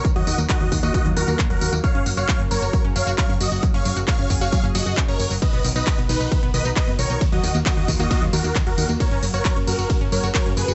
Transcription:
Already playing: D#3 F#3 F#4
0.05 D#3 A#3 F4, kick, closed hi-hat, tambourine
0.16 D#2 F#3 F#4 D#5, closed hi-hat
0.27 D#2 D#3, open hi-hat, tambourine
0.38 D#2 A#3, closed hi-hat, tambourine
0.49 D#3 F#4 D#5, kick, clap, closed hi-hat, tambourine
0.61 D#2 F#3, closed hi-hat
0.72 D#2 D#3, kick, open hi-hat, tambourine
0.83 D#2 A#3 F#4 D#5, closed hi-hat, tambourine
0.94 D#3, kick, closed hi-hat, tambourine
1.05 D#2 F#3, closed hi-hat
1.17 D#2 D#3 F#4 A#4, open hi-hat, tambourine
1.28 D#2 A#3, closed hi-hat, tambourine
1.39 D#3, kick, clap, closed hi-hat, tambourine
1.50 D#1 F#3 F#4 A#4, closed hi-hat
1.61 D#2 D#3, open hi-hat, tambourine
1.73 D#2 A#3, closed hi-hat, tambourine
1.84 C#3 F#3 A#4 C#5 F5, kick, closed hi-hat, tambourine
1.95 F#1 C#4, closed hi-hat
2.06 F#1 F#3, open hi-hat, tambourine
2.17 F#1 F#4 C#5 F5, closed hi-hat, tambourine
2.28 F#3, kick, clap, closed hi-hat, tambourine
2.40 F#1 C#4, closed hi-hat
2.51 F#1 F#3 A#4 C#5, open hi-hat, tambourine
2.62 F#1 F#4, tambourine
2.73 F#3, kick, closed hi-hat, tambourine
2.85 F#1 C#4, closed hi-hat
2.96 F#1 F#3 C#5 F5, open hi-hat, tambourine
3.07 F#1 F#4, tambourine
3.18 F#3 C#5 F5, kick, clap, closed hi-hat, tambourine
3.29 F#2 C#4, closed hi-hat
3.40 F#1 F#3 F#4 D#5, open hi-hat, tambourine
3.52 F#1 F#4, closed hi-hat, tambourine
3.63 F#3 G#4, kick, closed hi-hat, tambourine
3.74 F#1 C#4 C#5 F5, closed hi-hat
3.85 F#1 F#3, open hi-hat, tambourine
3.96 F#1 F#4, closed hi-hat, tambourine
4.08 F#3 C#5 F5, kick, clap, closed hi-hat, tambourine
4.19 F#1 C#4, closed hi-hat
4.30 F#1 F#3, kick, open hi-hat, tambourine
4.41 F#1 F#4 C#5 F5, tambourine
4.52 F#3, kick, closed hi-hat, tambourine
4.64 F#1 C#4, closed hi-hat
4.75 F#1 F#3 F#4 D#5, open hi-hat, tambourine
4.86 F#2 F#4, closed hi-hat, tambourine
4.97 C#4, kick, clap, closed hi-hat, tambourine
5.08 F#1 C#4 A#4 C#5, closed hi-hat
5.20 F#1 C#5, open hi-hat, tambourine
5.31 F#1 F#3, open hi-hat, tambourine
5.42 D#3 B3 B4 D#5, kick, ride, tambourine
5.53 B1 B3, closed hi-hat
5.64 B1 D#3, open hi-hat, tambourine
5.76 B1 D#4 B4 D#5, tambourine
5.87 D#3, kick, clap, closed hi-hat, ride, tambourine
5.98 B1 B3, closed hi-hat
6.09 B1 D#3 D#4 B4, open hi-hat, tambourine
6.20 B1 D#4, closed hi-hat, tambourine
6.32 D#3, kick, closed hi-hat, ride, tambourine
6.43 B1 B3, closed hi-hat
6.54 B1 D#3 B4 D#5, open hi-hat, tambourine
6.65 B1 D#4, closed hi-hat, tambourine
6.76 D#3 B4 D#5, kick, clap, closed hi-hat, ride, tambourine
6.88 F#1 B3, closed hi-hat
6.99 B1 D#3 A#4 C#5, open hi-hat, tambourine
7.10 B1 D#4, closed hi-hat, tambourine
7.21 D#3 A#3 F4, kick, closed hi-hat, ride, tambourine
7.32 D#2 F#3 F#4 D#5, closed hi-hat
7.43 D#2 D#3, open hi-hat, tambourine
7.55 D#2 A#3, closed hi-hat, tambourine
7.66 D#3 F#4 D#5, kick, clap, closed hi-hat, ride, tambourine
7.77 D#2 F#3, closed hi-hat
7.88 D#2 D#3, kick, open hi-hat, tambourine
7.99 D#2 A#3 F#4 D#5, closed hi-hat, tambourine
8.11 D#3, kick, closed hi-hat, ride, tambourine
8.22 D#2 F#3, closed hi-hat
8.33 D#2 D#3 F#4 A#4, open hi-hat, tambourine
8.44 D#2 A#3, closed hi-hat, tambourine
8.55 D#3, kick, clap, closed hi-hat, ride, tambourine
8.67 D#1 F#3 F#4 A#4, closed hi-hat
8.78 D#2 D#3, open hi-hat, tambourine
8.89 D#2 A#3, tambourine
9.00 C#3 F#3 F#4 A#4 C#5, kick, closed hi-hat, ride, tambourine
9.11 F#1 C#4, closed hi-hat
9.23 F#1 F#3, open hi-hat, tambourine
9.34 F#1 F#4 A#4 C#5, closed hi-hat, tambourine
9.45 F#3, kick, clap, closed hi-hat, ride, tambourine
9.56 F#1 C#4, closed hi-hat
9.67 F#1 F#3 F#4 A#4, open hi-hat, tambourine
9.79 F#1 F#4, closed hi-hat, tambourine
9.90 F#3, kick, closed hi-hat, ride, tambourine
10.01 F#1 C#4, closed hi-hat
10.12 F#1 F#3 A#4 C#5, open hi-hat, tambourine
10.23 F#1 F#4, closed hi-hat, tambourine
10.35 F#3 A#4 C#5, kick, clap, closed hi-hat, ride, tambourine
10.46 F#2 C#4, closed hi-hat
10.57 F#1 F#3 G#4 B4, open hi-hat, tambourine
10.68 F#1 F#4, closed hi-hat, tambourine

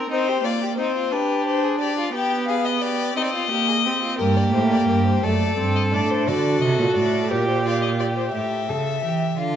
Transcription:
Already playing: A#4
0.10 C4 D#4 C5
0.28 G4
0.44 A#3 F4 D5
0.62 G4
0.78 C4 D#4 C5
0.96 F4
1.12 D4 G4 B4
1.47 C5
1.64 G#4
1.81 G4 D5
1.98 F4
2.13 B3 G4 G5
2.48 G#4 F5
2.65 D#5
2.82 G4 D5
3.16 C4 D#4 D#5
3.24 D5
3.30 F4 D#5
3.51 A#3 G4
3.67 G#4
3.85 C4 G4
4.02 F4
4.19 G2 A#3 G4 A#4
4.37 D5
4.54 A2 C5
4.72 D5
4.89 G2 A#4
5.07 C5
5.23 F#2 A3 A4 D5
5.58 G2 C4
5.76 D#5
5.93 A2 D4 D5
6.11 C5
6.27 D3 F#4 A4 D5
6.62 C3 D#5
6.79 A#2
6.96 A2 D5
7.31 A#2 G4 A#4
7.48 C5
7.65 F4 D5
7.82 D#5
7.99 G4 D5
8.17 C5
8.33 A2 G4 E5
8.69 C#3 A4
9.04 E3 G4
9.38 D3 F4 F5

